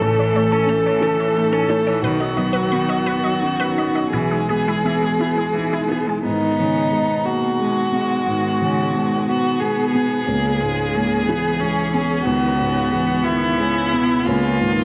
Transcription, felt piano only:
Already playing: E4
0.01 A1
0.34 A3
0.66 C#4
1.00 E4
1.36 D#4
1.69 E4
2.02 B1
2.38 F#3
2.72 B3
3.08 D#4
3.42 C#4
3.77 D#4
4.13 B1
4.49 G#3
4.84 B3
5.20 E4
5.57 D#4
5.90 E4
6.25 G#2
6.59 D#3
6.92 G#3
7.26 F#4
7.60 G#3
7.92 B3
8.27 G#2
8.62 D#3
8.96 G#3
9.29 F#4
9.62 G#3
9.94 B3
10.28 C#2
10.61 G#2
10.95 G#3
11.29 E4
11.62 G#3
11.94 B3
12.26 C#2
12.60 G#2
12.92 G#3
13.25 E5
13.59 G#3
13.93 B3
14.28 C#2
14.60 G#2

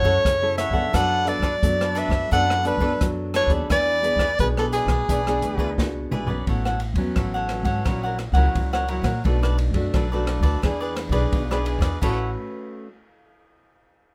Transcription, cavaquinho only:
0.04 E4 A4 C#5 F#5
0.58 E4 A4 C#5 F#5
0.73 A4 C#5 F#5
0.93 D4 A4 B4 D5
1.26 D4 A4 B4 D5
1.43 D4 A4 B4 D5
1.80 A4 B4 D5
1.95 D4 A4 B4 D5
2.10 A4 B4 D5
2.31 D4 A4 B4 D5
2.64 D4 A4 B4 D5
2.80 D4 A4 B4 D5
3.34 D4 A4 B4 D5
3.49 A4 B4 D5
3.70 E4 G#4 B4 D5
4.03 E4 G#4 B4 D5
4.20 E4 G#4 B4 D5
4.58 G#4 B4 D5
4.72 E4 G#4 B4 D5
4.89 G#4 B4 D5
5.10 E4 G#4 B4 D5
5.42 E4 G#4 B4 D5
5.59 E4 G#4 B4 D5
6.12 E4 G#4 B4 D5
6.28 G#4 B4 D5
6.47 E4 A4 C#5 F#5
6.65 A4 C#5 F#5
6.81 muted cavaquinho stroke
7.16 E4 A4 C#5 F#5
7.34 A4 C#5 F#5
7.65 A4 C#5 F#5
7.85 E4 A#4 C#5 F#5
8.03 A#4 C#5 F#5
8.18 muted cavaquinho stroke
8.34 A#4 C#5 F#5
8.73 A#4 C#5 F#5
8.88 E4 A#4 C#5 F#5
9.04 A#4 C#5 F#5
9.24 D4 A4 B4 D5
9.43 A4 B4 D5
9.58 muted cavaquinho stroke
9.94 D4 A4 B4 D5
10.12 A4 B4 D5
10.43 A4 B4 D5
10.62 E4 G#4 B4 D5
10.81 G#4 B4 D5
10.96 muted cavaquinho stroke
11.12 G#4 B4 D5
11.51 G#4 B4 D5
11.65 E4 G#4 B4 D5
11.81 G#4 B4 D5
12.02 E4 A4 C#5 F#5

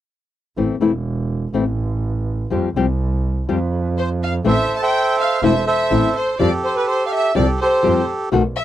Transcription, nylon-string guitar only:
0.57 E3 A3 C4 E4
0.81 E3 A3 C4 E4
1.54 E3 A3 C4 E4
2.50 F3 G3 C4 G4
2.76 F3 G3 C4 G4
3.49 F3 G3 C4 G4
4.45 E3 A3 C4 E4
5.42 E3 A3 C4 E4
5.90 E3 A3 C4 E4
6.40 F3 G3 C4 G4
7.35 F3 G3 C4 G4
7.83 F3 G3 C4 G4
8.32 B2 D#3 A3 B3 F#4

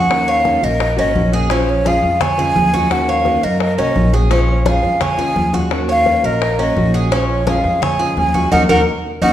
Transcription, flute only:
Already playing: F#5
0.29 F5
0.64 D#5
0.99 D#5
1.52 C5
1.70 C#5
1.87 F5
2.22 G#5
2.92 F#5
3.10 F5
3.44 D#5
3.62 D#5
3.79 D#5
4.33 C5
4.50 C#5
4.67 F5
5.02 G#5
5.91 F5
6.26 D#5
6.60 D#5
7.13 C5
7.30 C#5
7.48 F5
7.83 G#5
8.18 G#5
8.52 F#5
8.70 F#5
9.23 F#5

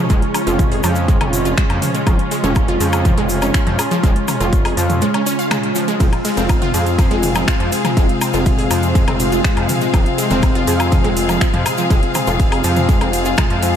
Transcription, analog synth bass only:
0.10 F1
0.47 F1
0.84 F2
1.21 F1
1.70 F2
2.07 F1
2.44 F1
2.80 F2
3.17 F1
3.67 F2
4.03 F1
4.40 F1
4.77 F2
6.00 F1
6.37 F1
6.74 F2
7.11 F1
7.60 F2
7.97 F1
8.34 F1
8.71 F2
9.08 F1
9.57 F2
9.94 F1
10.31 F1
10.67 F2
11.04 F1
11.54 F2
11.90 F1
12.27 F1
12.64 F2
13.01 F1
13.50 F2

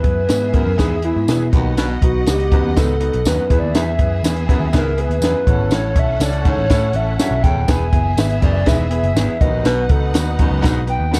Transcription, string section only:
Already playing: B3 G#4 E5
1.53 B3 D#5 F#5
3.49 B3 G#4 E5
5.47 C#4 A4 F#5
7.68 B3 G#4 E5
9.41 D#4 B4 F#5

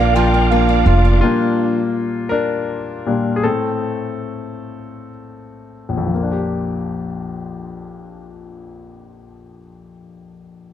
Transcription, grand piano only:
Already playing: A#3 F4
0.16 F4
0.52 A#3
0.87 F4
1.21 A#2 G3 A#3 D4 F4
2.29 D4 A#4
3.06 A#2 G3 D4
3.36 G#4
3.43 A2 A3 C4 A4
5.89 A#1
5.97 F2
6.06 F3
6.14 A#3
6.23 D4
6.32 G4

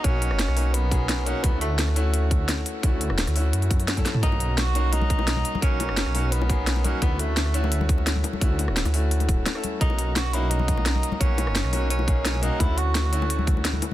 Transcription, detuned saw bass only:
0.04 B1
0.31 F#1
0.48 B1
1.44 D2
2.83 D2
3.10 D1
3.27 D2
3.53 F#2
4.23 B1
5.62 B1
5.89 F#1
6.06 B1
7.02 D2
8.41 D2
8.68 D1
8.85 D2
9.29 D1
9.81 B1
11.21 B1
11.47 F#1
11.64 B1
12.60 D2

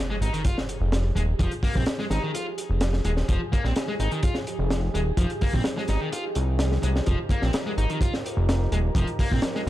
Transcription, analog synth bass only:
0.21 G#1
0.81 F1
1.16 D#1
1.39 F1
1.76 A#1
2.10 G#1
2.70 F1
3.05 D#1
3.29 F1
3.64 A#1
4.00 G#1
4.59 F1
4.94 D#1
5.17 F1
5.53 A#1
5.89 G#1
6.36 C2
6.83 C2
7.07 F1
7.43 A#1
7.77 G#1
8.37 F1
8.72 D#1
8.95 F1
9.32 A#1

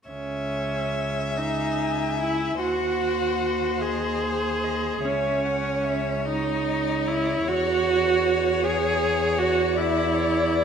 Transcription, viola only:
0.08 C#4
1.37 D#4
2.20 E4
2.61 F#4
3.81 G#4
5.04 C#4
6.27 D#4
7.07 E4
7.48 F#4
8.64 G#4
9.39 F#4
9.78 E4

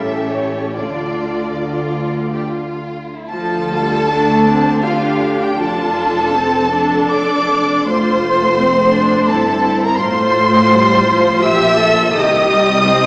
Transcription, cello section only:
Already playing: A2
0.79 D3
3.32 D3
5.58 F2
7.88 F2
9.30 G2
10.02 A2
11.44 A#2
12.14 C3

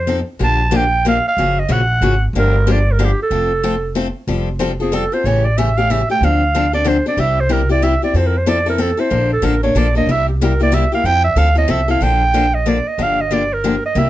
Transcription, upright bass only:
Already playing: F2
0.40 A#1
1.37 F#1
1.69 A#1
2.01 G#1
2.33 G1
3.31 F1
4.27 F1
5.24 A1
6.21 D2
7.17 C2
8.14 F2
9.11 A#1
9.42 A1
9.75 A#1
10.06 C2
11.04 F2
11.36 D2
11.68 C2
12.01 A#1
12.98 G1
13.95 C2

